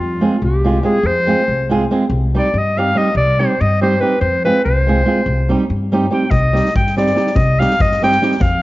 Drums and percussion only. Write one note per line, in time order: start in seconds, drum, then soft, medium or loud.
6.31 kick medium
6.56 snare soft
6.65 snare soft
6.75 kick loud
6.87 snare soft
6.97 snare soft
7.06 snare soft
7.16 snare soft
7.27 snare soft
7.36 kick loud
7.61 snare soft
7.70 snare soft
7.80 kick loud
7.91 snare soft
8.02 snare soft
8.12 snare soft
8.22 snare soft
8.32 snare soft
8.41 kick loud